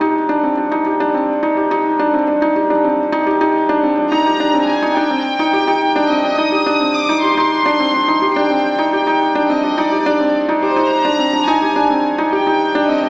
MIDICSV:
0, 0, Header, 1, 3, 480
1, 0, Start_track
1, 0, Tempo, 566038
1, 371, Time_signature, 4, 2, 24, 8
1, 11100, End_track
2, 0, Start_track
2, 0, Title_t, "Violin section"
2, 0, Program_c, 0, 48
2, 3496, Note_on_c, 0, 82, 109
2, 3940, Note_off_c, 0, 82, 0
2, 3973, Note_on_c, 0, 80, 94
2, 4212, Note_off_c, 0, 80, 0
2, 4212, Note_on_c, 0, 79, 106
2, 5171, Note_off_c, 0, 79, 0
2, 5171, Note_on_c, 0, 75, 95
2, 5411, Note_off_c, 0, 75, 0
2, 5412, Note_on_c, 0, 87, 112
2, 5891, Note_off_c, 0, 87, 0
2, 5895, Note_on_c, 0, 86, 101
2, 6129, Note_on_c, 0, 84, 110
2, 6133, Note_off_c, 0, 86, 0
2, 7056, Note_off_c, 0, 84, 0
2, 7092, Note_on_c, 0, 79, 96
2, 7562, Note_off_c, 0, 79, 0
2, 7572, Note_on_c, 0, 79, 88
2, 8018, Note_off_c, 0, 79, 0
2, 8052, Note_on_c, 0, 75, 86
2, 8291, Note_off_c, 0, 75, 0
2, 8298, Note_on_c, 0, 74, 82
2, 8774, Note_off_c, 0, 74, 0
2, 9010, Note_on_c, 0, 72, 105
2, 9234, Note_off_c, 0, 72, 0
2, 9251, Note_on_c, 0, 82, 127
2, 9727, Note_on_c, 0, 80, 107
2, 9731, Note_off_c, 0, 82, 0
2, 10209, Note_off_c, 0, 80, 0
2, 10459, Note_on_c, 0, 79, 93
2, 10902, Note_off_c, 0, 79, 0
2, 10938, Note_on_c, 0, 75, 84
2, 11100, Note_off_c, 0, 75, 0
2, 11100, End_track
3, 0, Start_track
3, 0, Title_t, "Felt piano"
3, 0, Program_c, 1, 0
3, 0, Control_c, 1, 64, 127
3, 0, Note_on_c, 1, 60, 70
3, 0, Note_on_c, 1, 62, 86
3, 0, Note_on_c, 1, 63, 90
3, 0, Note_on_c, 1, 67, 79
3, 7, Note_off_c, 1, 63, 0
3, 7, Note_on_c, 1, 63, 102
3, 123, Note_off_c, 1, 63, 0
3, 246, Note_off_c, 1, 62, 0
3, 246, Note_on_c, 1, 62, 93
3, 363, Note_off_c, 1, 62, 0
3, 368, Note_off_c, 1, 60, 0
3, 368, Note_on_c, 1, 60, 70
3, 438, Note_off_c, 1, 60, 0
3, 487, Note_on_c, 1, 62, 67
3, 557, Note_off_c, 1, 62, 0
3, 607, Note_on_c, 1, 63, 93
3, 677, Note_off_c, 1, 63, 0
3, 729, Note_off_c, 1, 67, 0
3, 729, Note_on_c, 1, 67, 73
3, 844, Note_off_c, 1, 67, 0
3, 850, Note_on_c, 1, 62, 95
3, 965, Note_off_c, 1, 62, 0
3, 968, Note_on_c, 1, 60, 76
3, 1084, Note_off_c, 1, 60, 0
3, 1210, Note_on_c, 1, 63, 99
3, 1325, Note_off_c, 1, 63, 0
3, 1330, Note_on_c, 1, 67, 74
3, 1445, Note_off_c, 1, 67, 0
3, 1451, Note_on_c, 1, 63, 101
3, 1565, Note_off_c, 1, 63, 0
3, 1691, Note_on_c, 1, 62, 99
3, 1805, Note_off_c, 1, 62, 0
3, 1812, Note_on_c, 1, 60, 82
3, 1880, Note_off_c, 1, 60, 0
3, 1931, Note_on_c, 1, 62, 75
3, 1999, Note_off_c, 1, 62, 0
3, 2052, Note_on_c, 1, 63, 102
3, 2120, Note_off_c, 1, 63, 0
3, 2170, Note_on_c, 1, 67, 71
3, 2284, Note_off_c, 1, 67, 0
3, 2291, Note_on_c, 1, 62, 92
3, 2405, Note_off_c, 1, 62, 0
3, 2411, Note_on_c, 1, 60, 75
3, 2525, Note_off_c, 1, 60, 0
3, 2649, Note_on_c, 1, 63, 108
3, 2764, Note_off_c, 1, 63, 0
3, 2769, Note_on_c, 1, 67, 84
3, 2884, Note_off_c, 1, 67, 0
3, 2890, Note_on_c, 1, 63, 105
3, 3005, Note_off_c, 1, 63, 0
3, 3130, Note_on_c, 1, 62, 102
3, 3245, Note_off_c, 1, 62, 0
3, 3251, Note_on_c, 1, 60, 76
3, 3319, Note_off_c, 1, 60, 0
3, 3369, Note_on_c, 1, 62, 75
3, 3439, Note_off_c, 1, 62, 0
3, 3491, Note_on_c, 1, 63, 99
3, 3559, Note_off_c, 1, 63, 0
3, 3609, Note_on_c, 1, 67, 77
3, 3724, Note_off_c, 1, 67, 0
3, 3731, Note_on_c, 1, 62, 99
3, 3845, Note_off_c, 1, 62, 0
3, 3849, Note_on_c, 1, 60, 79
3, 3964, Note_off_c, 1, 60, 0
3, 4091, Note_on_c, 1, 63, 106
3, 4205, Note_off_c, 1, 63, 0
3, 4211, Note_on_c, 1, 62, 96
3, 4222, Control_c, 1, 64, 0
3, 4325, Note_off_c, 1, 62, 0
3, 4330, Note_on_c, 1, 60, 77
3, 4364, Control_c, 1, 64, 127
3, 4445, Note_off_c, 1, 60, 0
3, 4573, Note_on_c, 1, 63, 102
3, 4686, Note_off_c, 1, 63, 0
3, 4691, Note_on_c, 1, 67, 85
3, 4805, Note_off_c, 1, 67, 0
3, 4812, Note_on_c, 1, 63, 102
3, 4925, Note_off_c, 1, 63, 0
3, 5052, Note_on_c, 1, 62, 103
3, 5165, Note_off_c, 1, 62, 0
3, 5172, Note_on_c, 1, 60, 78
3, 5240, Note_off_c, 1, 60, 0
3, 5293, Note_on_c, 1, 62, 72
3, 5360, Note_off_c, 1, 62, 0
3, 5408, Note_on_c, 1, 63, 94
3, 5478, Note_off_c, 1, 63, 0
3, 5530, Note_on_c, 1, 67, 72
3, 5644, Note_off_c, 1, 67, 0
3, 5651, Note_on_c, 1, 62, 102
3, 5765, Note_off_c, 1, 62, 0
3, 5772, Note_on_c, 1, 60, 79
3, 5885, Note_off_c, 1, 60, 0
3, 6012, Note_on_c, 1, 63, 101
3, 6125, Note_off_c, 1, 63, 0
3, 6130, Note_on_c, 1, 67, 75
3, 6244, Note_off_c, 1, 67, 0
3, 6252, Note_on_c, 1, 63, 103
3, 6366, Note_off_c, 1, 63, 0
3, 6493, Note_on_c, 1, 62, 102
3, 6606, Note_off_c, 1, 62, 0
3, 6612, Note_on_c, 1, 60, 84
3, 6680, Note_off_c, 1, 60, 0
3, 6732, Note_on_c, 1, 62, 75
3, 6800, Note_off_c, 1, 62, 0
3, 6851, Note_on_c, 1, 63, 99
3, 6919, Note_off_c, 1, 63, 0
3, 6969, Note_on_c, 1, 67, 75
3, 7084, Note_off_c, 1, 67, 0
3, 7092, Note_on_c, 1, 62, 104
3, 7205, Note_off_c, 1, 62, 0
3, 7213, Note_on_c, 1, 60, 73
3, 7326, Note_off_c, 1, 60, 0
3, 7451, Note_on_c, 1, 63, 99
3, 7565, Note_off_c, 1, 63, 0
3, 7574, Note_on_c, 1, 67, 78
3, 7686, Note_off_c, 1, 67, 0
3, 7691, Note_on_c, 1, 63, 100
3, 7805, Note_off_c, 1, 63, 0
3, 7931, Note_on_c, 1, 62, 103
3, 8045, Note_off_c, 1, 62, 0
3, 8051, Note_on_c, 1, 60, 78
3, 8119, Note_off_c, 1, 60, 0
3, 8172, Note_on_c, 1, 62, 76
3, 8240, Note_off_c, 1, 62, 0
3, 8291, Note_on_c, 1, 63, 106
3, 8359, Note_off_c, 1, 63, 0
3, 8411, Note_on_c, 1, 67, 78
3, 8525, Note_off_c, 1, 67, 0
3, 8532, Note_on_c, 1, 62, 111
3, 8645, Note_off_c, 1, 62, 0
3, 8650, Note_on_c, 1, 60, 74
3, 8764, Note_off_c, 1, 60, 0
3, 8892, Note_on_c, 1, 63, 97
3, 9005, Note_off_c, 1, 63, 0
3, 9011, Note_on_c, 1, 67, 83
3, 9125, Note_off_c, 1, 67, 0
3, 9128, Note_on_c, 1, 63, 99
3, 9243, Note_off_c, 1, 63, 0
3, 9368, Note_on_c, 1, 62, 97
3, 9484, Note_off_c, 1, 62, 0
3, 9490, Note_on_c, 1, 60, 83
3, 9559, Note_off_c, 1, 60, 0
3, 9609, Note_on_c, 1, 62, 75
3, 9678, Note_off_c, 1, 62, 0
3, 9731, Note_on_c, 1, 63, 103
3, 9799, Note_off_c, 1, 63, 0
3, 9850, Note_on_c, 1, 67, 77
3, 9965, Note_off_c, 1, 67, 0
3, 9972, Note_on_c, 1, 62, 100
3, 10085, Note_off_c, 1, 62, 0
3, 10092, Note_on_c, 1, 60, 74
3, 10206, Note_off_c, 1, 60, 0
3, 10331, Note_on_c, 1, 63, 100
3, 10445, Note_off_c, 1, 63, 0
3, 10452, Note_on_c, 1, 67, 82
3, 10565, Note_off_c, 1, 67, 0
3, 10573, Note_on_c, 1, 63, 95
3, 10686, Note_off_c, 1, 63, 0
3, 10812, Note_on_c, 1, 62, 105
3, 10926, Note_off_c, 1, 62, 0
3, 10932, Note_on_c, 1, 60, 80
3, 11000, Note_off_c, 1, 60, 0
3, 11051, Note_on_c, 1, 62, 70
3, 11100, Note_off_c, 1, 62, 0
3, 11100, End_track
0, 0, End_of_file